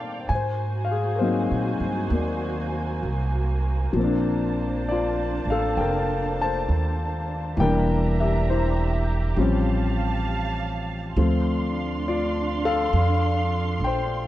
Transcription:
Already playing: A#2 G3 A#3 C4 D4 D#4 A4 A#4 C5 D5 F5 G5 A5
0.29 G#2 A#3 F#4 C5 G#5
0.35 C5
0.85 F5
0.91 G#4
1.16 A#4 C5
1.21 F#3 A#3 C4 D#4
1.51 A#2
1.80 G2
2.10 D#2 A#3
2.15 D5
3.03 C2
3.93 A#1 F3 A#3 D4 A5
3.98 C4 C5
4.04 D4
4.89 F4 D5
5.45 A1
5.50 A4 F5
5.77 F1 A#4 G5
6.42 C5 A5
6.69 D#2
7.57 E1 E3 G3 A#3 D4 G4 E5 G5 A#5
7.61 D4 A#4
8.20 G4 E5
8.50 E4 C5
9.36 A1 F3 G3 C4 C#4 F5 A5
11.16 D2 F3 A3 C4 D4 F4 F5 C6
12.08 F4 D5
12.65 A4 F5
12.93 F2
13.79 A#1
13.84 C5 G5

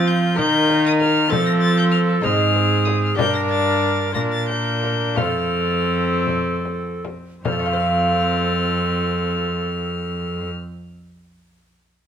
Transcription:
Already playing: F3 A3 C4 F4 C5
0.07 G6
0.35 D#3 A#3 D#4 A#4 D#5 G6, frame drum
0.70 frame drum
0.86 D#6
1.00 F6, frame drum
1.27 F3 A3 F4 A4 C5 A6
1.31 C4, frame drum
1.46 A#6
1.61 A6
1.78 G6
1.91 F6
2.21 G#2 G#3 C4 D#4 G#4 C5 F6
2.25 frame drum
2.56 frame drum
2.85 D#6, frame drum
3.04 F6
3.15 G2 A#3 D4 G4 A#4 D5 G6, frame drum
3.35 A#6
3.49 A6
4.12 A#2 A#3 D4 F4 A#4 D5 A#6, frame drum
4.32 A6
4.48 G6, frame drum
4.83 frame drum
5.15 F2 A3 C4 F4 A#4 C5 F6, frame drum
5.21 A4
6.27 frame drum
6.65 frame drum
7.05 frame drum
7.44 F2 C4 A#4 F6, frame drum
7.49 F3 A4
7.59 A3
7.66 F4
7.73 C5
7.80 F5

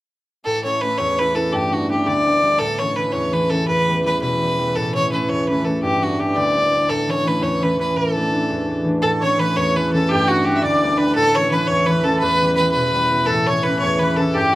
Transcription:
0.44 A2 E3 A4
0.64 A3 C#4 E4 C#5
0.81 A3 C#4 E4 B4
0.98 E2 C#5
1.19 A3 C#4 E4 B4
1.35 A3 C#4 E4 A4
1.52 G2 G4
1.71 G3 B3 D4 F#4
1.89 G3 B3 D4 G4
2.06 D2 D5
2.25 G3 B3 D4
2.43 G3 B3 D4
2.59 A2 A4
2.79 E3 A3 C#4 C#5
2.96 E3 A3 C#4 B4
3.12 E2 C#5
3.33 E3 A3 C#4 B4
3.50 E3 A3 C#4 A4
3.68 E2 B4
3.88 E3 G3 B3
4.05 E3 G3 B3 B4
4.21 B2 B4
4.41 E3 G3 B3
4.58 E3 G3 B3
4.75 A2 E3 A4
4.94 E3 A3 C#4 C#5
5.12 E3 A3 C#4 B4
5.28 E2 C#5
5.43 C#5
5.47 E3 A3 C#4 B4
5.64 E3 A3 C#4 A4
5.82 G2 G4
6.02 G3 B3 D4 F#4
6.18 G3 B3 D4 G4
6.35 D2 D5
6.55 G3 B3 D4
6.72 G3 B3 D4
6.89 A2 A4
7.08 E3 A3 C#4 C#5
7.24 E3 A3 C#4 B4
7.41 E2 C#5
7.62 E3 A3 C#4 B4
7.79 E3 A3 C#4 B4
7.96 A2 A4
8.16 E3 A3 D4
8.33 E3 A3 D4
8.50 E2
8.68 E3 A3 D4
8.84 E3 A3
8.89 D4
9.02 A2 E3 A4
9.20 E3 A3 C#4 C#5
9.39 E3 A3 C#4 B4
9.56 E2 C#5
9.76 E3 A3 C#4 B4
9.93 E3 A3 C#4 A4
10.09 G2 G4
10.28 G3 B3 D4 F#4
10.45 G3 B3 D4 G4
10.56 E5
10.62 D2 D5
10.83 G3 B3 D4
10.97 G3 B3 D4 B4
11.15 A2 A4
11.35 E3 A3 C#4 C#5
11.51 E3 A3 C#4 B4
11.67 E2 C#5
11.86 E3 A3 C#4 B4
12.03 E3 A3 C#4 A4
12.19 E2 B4
12.42 E3 G3 B3
12.55 E3 G3 B4
12.60 B3
12.71 B2 B4
12.94 E3 G3 B3
13.12 E3 G3 B3
13.26 A2 E3 A4
13.30 A2
13.47 E3 A3 C#4 C#5
13.63 E3 A3 B4
13.68 C#4
13.79 C#5
13.83 E2
13.99 E3 A3 C#4 B4
14.17 E3 A3 C#4 A4
14.33 G2 G4
14.51 G4

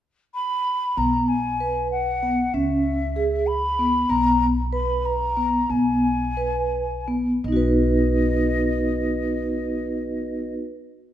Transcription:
0.34 B5
0.97 B1 B3 A#5
1.28 G#5
1.60 B4
1.91 F#5
2.23 B3
2.54 C#2 C#4 E5
3.16 G#4
3.47 B5
3.79 B3
4.09 B1 B3 A#5
4.73 B4 B5
5.05 A#5
5.37 B3
5.70 B1 B3 G#5
6.37 B4
7.08 B3
7.44 B1 B3 D#5
7.48 D#4
7.52 F#4 B4

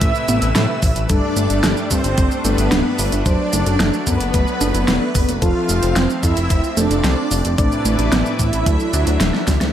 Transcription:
Already playing: A2 C3 E3 A3 C4 E4 B4 E5 E6
0.01 A1 A3, kick, closed hi-hat, shaker
0.15 shaker
0.28 A1 B3, closed hi-hat, shaker
0.42 A1, closed hi-hat, shaker
0.55 A2, snare, closed hi-hat, shaker
0.82 A1 E3, kick, open hi-hat, shaker
0.96 A1, closed hi-hat, shaker
1.09 G1 G2 G3 D4 A4 D5, kick, closed hi-hat, shaker
1.37 G1 A3, closed hi-hat, shaker
1.50 G1 G2 G3 D4 A4, closed hi-hat, shaker
1.64 G1 D4, snare, closed hi-hat, shaker
1.77 shaker
1.90 G2 C4 C5, kick, closed hi-hat, shaker
2.04 G1, closed hi-hat, shaker
2.18 G1 G3, kick, closed hi-hat, shaker
2.31 shaker
2.45 G1 G2 G3 A3 B3 D4 A4 B4, closed hi-hat, shaker
2.58 G1, closed hi-hat, shaker
2.72 D1 D4, snare, closed hi-hat, shaker
2.99 G1 G3, open hi-hat, shaker
3.12 G1, closed hi-hat, shaker
3.26 F#1 F#3 D4 C5 D5, kick, closed hi-hat, shaker
3.53 F#1 A3, closed hi-hat, shaker
3.66 F#1 F#3 D4 A4, closed hi-hat, shaker
3.80 F#1 D4, snare, closed hi-hat, shaker
3.93 shaker
4.07 F#2 F#3 B3 B4, kick, closed hi-hat, shaker
4.20 F#1, closed hi-hat, shaker
4.34 F#1 A3, kick, closed hi-hat, shaker
4.47 shaker
4.61 F#1 D4, closed hi-hat, shaker
4.74 F#1, closed hi-hat, shaker
4.88 E1, snare, closed hi-hat, shaker
5.15 F#1 F#3, kick, open hi-hat, shaker
5.29 F#1, closed hi-hat, shaker
5.42 F1 F3 C4 F4 A4 F5, kick, closed hi-hat, shaker
5.69 F1 A3, closed hi-hat, shaker
5.83 F1 F3 C4 C5, closed hi-hat, shaker
5.96 F1 C4, snare, closed hi-hat, shaker
6.10 shaker
6.23 F2 E4 E5, kick, closed hi-hat, shaker
6.37 F1, closed hi-hat, shaker
6.50 F1 F3, kick, closed hi-hat, shaker
6.64 shaker
6.77 F1 F3 A3 C4 D4 A4 D5, closed hi-hat, shaker
6.91 F1, closed hi-hat, shaker
7.04 C2 C4, snare, closed hi-hat, shaker
7.31 F1 F3, open hi-hat, shaker
7.45 F1, closed hi-hat, shaker
7.58 A1 A2 C3 E3 A3 C4 D4 E4 B4 D5, kick, closed hi-hat, shaker
7.72 shaker
7.85 A1 A3, closed hi-hat, shaker
7.99 A1 A2 A3 C4 B4, closed hi-hat, shaker
8.12 A1 B3, snare, closed hi-hat, shaker
8.26 shaker
8.39 A2 E3 E4 E5, kick, closed hi-hat, shaker
8.53 A1, closed hi-hat, shaker
8.66 D2 F#3 A3 D4 A4, kick, closed hi-hat, shaker
8.80 shaker
8.93 D2 D4, closed hi-hat, shaker
9.07 D2, closed hi-hat, shaker
9.21 D1, snare, closed hi-hat, shaker
9.34 snare
9.47 D2 F#3, kick, snare, open hi-hat, shaker
9.61 D2, snare, closed hi-hat, shaker

